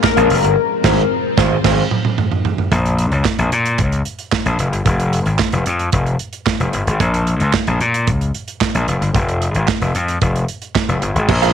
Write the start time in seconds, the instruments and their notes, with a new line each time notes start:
Already playing: string machine G#3 A#3 C#4
0.03 analog polysynth A#4, muted clean electric guitar stroke, kick, snare, clap
0.17 slap bass A#1, clean electric guitar C#4 G#4 A#4 F5, closed hi-hat
0.30 slap bass F1, muted clean electric guitar stroke, open hi-hat
0.44 slap bass G1, muted clean electric guitar stroke, closed hi-hat
0.57 string machine F3 C4
0.84 slap bass G#1, clean electric guitar D#4 G#4 C5, kick, snare, crash
1.38 slap bass G#1, clean electric guitar D#4 G#4 C5 F5, kick, snare
1.64 slap bass G#1, clean electric guitar D#4 G#4 C5 F5, kick, snare, crash
1.91 mid tom
2.05 mid tom
2.18 floor tom
2.31 floor tom
2.45 floor tom
2.58 floor tom
2.72 slap bass A#1, kick, closed hi-hat
2.86 closed hi-hat
2.99 closed hi-hat
3.11 slap bass C#2, closed hi-hat
3.25 kick, snare, clap
3.39 slap bass A#1, closed hi-hat
3.52 slap bass A#2, closed hi-hat
3.65 closed hi-hat
3.78 slap bass C#2, kick, closed hi-hat
3.92 closed hi-hat
4.05 closed hi-hat
4.19 closed hi-hat
4.32 kick, snare, clap
4.46 slap bass A#1, closed hi-hat
4.59 slap bass F1, closed hi-hat
4.73 slap bass G1, closed hi-hat
4.86 slap bass F1, kick, closed hi-hat
5.00 closed hi-hat
5.13 closed hi-hat
5.26 slap bass G#1, closed hi-hat
5.39 kick, snare, clap
5.52 slap bass F1, closed hi-hat
5.66 slap bass F2, closed hi-hat
5.79 closed hi-hat
5.92 slap bass F1, kick, closed hi-hat
6.06 closed hi-hat
6.19 closed hi-hat
6.33 closed hi-hat
6.47 kick, snare, clap
6.60 slap bass F1, closed hi-hat
6.73 slap bass G1, closed hi-hat
6.87 slap bass G#1, closed hi-hat
7.00 slap bass A#1, kick, closed hi-hat
7.14 closed hi-hat
7.27 closed hi-hat
7.40 slap bass C#2, closed hi-hat
7.53 kick, snare, clap
7.67 slap bass A#1, closed hi-hat
7.81 slap bass A#2, closed hi-hat
7.94 closed hi-hat
8.07 slap bass C#2, kick, closed hi-hat
8.21 closed hi-hat
8.34 closed hi-hat
8.48 closed hi-hat
8.61 kick, snare, clap
8.75 slap bass A#1, closed hi-hat
8.88 slap bass F1, closed hi-hat
9.01 slap bass G1, closed hi-hat
9.15 slap bass F1, kick, closed hi-hat
9.29 closed hi-hat
9.42 closed hi-hat
9.55 slap bass G#1, closed hi-hat
9.68 kick, snare, clap
9.81 slap bass F1, closed hi-hat
9.95 slap bass F2, closed hi-hat
10.08 closed hi-hat
10.22 slap bass F1, kick, closed hi-hat
10.36 closed hi-hat
10.48 closed hi-hat
10.62 closed hi-hat
10.75 kick, snare, clap
10.88 slap bass F1, closed hi-hat
11.02 slap bass G1, closed hi-hat
11.15 slap bass G#1, closed hi-hat
11.28 slap bass A#1, string machine G#3 A#3 C#4, muted clean electric guitar stroke, kick, crash
11.42 clean electric guitar F4 G#4 C#5 F5, closed hi-hat